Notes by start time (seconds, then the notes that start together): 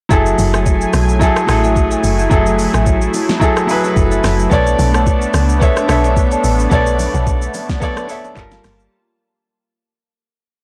0.09 F#1 F#3 A3 E4 G#4 A4 E5 G#5, kick, low conga, shaker
0.26 low bongo, shaker
0.39 F#1, open hi-hat, low conga, shaker
0.53 A4 E5 G#5, cross-stick, low bongo, shaker
0.66 kick, high bongo, shaker
0.81 shaker
0.93 B1, cross-stick, open hi-hat, low bongo, shaker
1.09 shaker
1.19 F#3 E4 G#4 A4 E5 G#5, kick, low conga, shaker
1.36 cross-stick, high bongo, shaker
1.47 A1 F#3 E4 G#4 A4, cross-stick, open hi-hat, shaker
1.64 A4 E5 G#5, low bongo, shaker
1.76 kick, high bongo, shaker
1.91 A4 E5 G#5, shaker
2.04 F#1, open hi-hat, shaker
2.19 shaker
2.30 F#1 F#3 E4 G#4 A4 E5 G#5, kick, low conga, shaker
2.46 low bongo, shaker
2.59 open hi-hat, low conga, shaker
2.74 A1 A4 E5 G#5, cross-stick, low bongo, shaker
2.86 kick, high bongo, shaker
3.02 shaker
3.14 open hi-hat, low bongo, shaker
3.29 snare, shaker
3.40 F#3 E4 G#4 A4 E5 G#5, kick, low conga, shaker
3.57 cross-stick, high bongo, shaker
3.67 F#3 E4 G#4 B4, open hi-hat, shaker
3.84 A4 E5 G#5, low bongo, shaker
3.96 F#1, kick, high bongo, shaker
4.11 A4 E5 G#5, shaker
4.24 F#1, cross-stick, snare, open hi-hat, shaker
4.39 shaker
4.50 B1 A3 B3 D4 A4 C#5 D5 A5, kick, low conga, shaker
4.67 low bongo, shaker
4.79 B1, open hi-hat, low conga, shaker
4.94 C#5 D5 A5, cross-stick, low bongo, shaker
5.07 kick, high bongo, shaker
5.22 shaker
5.34 C#2, cross-stick, open hi-hat, low bongo, shaker
5.49 shaker
5.60 B3 A4 C#5 D5 E5 A5, kick, low conga, shaker
5.77 cross-stick, high bongo, shaker
5.87 B1 B3 A4 C#5 E5, cross-stick, open hi-hat, shaker
6.04 C#5 D5 A5, low bongo, shaker
6.17 kick, high bongo, shaker
6.32 C#5 D5 A5, shaker
6.44 A1, open hi-hat, shaker
6.59 shaker
6.70 B1 B3 A4 C#5 D5 A5, kick, low conga, shaker
6.87 low bongo, shaker
6.99 open hi-hat, low conga, shaker
7.14 B1 C#5 D5 A5, low bongo, shaker
7.27 kick, high bongo, shaker
7.42 shaker
7.54 open hi-hat, low bongo, shaker
7.69 kick, snare, shaker
7.80 B3 A4 C#5 D5 A5, kick, low conga, shaker
7.97 cross-stick, high bongo, shaker
8.07 B3 A4 C#5 E5, open hi-hat, shaker
8.24 C#5 D5 A5, low bongo, shaker
8.35 G1 G3 A#3 F4 A4 A#4 A5, kick, clap, high bongo, shaker
8.52 A#4 F5 A5, snare, shaker
8.64 G1, cross-stick, snare, open hi-hat, shaker
8.79 shaker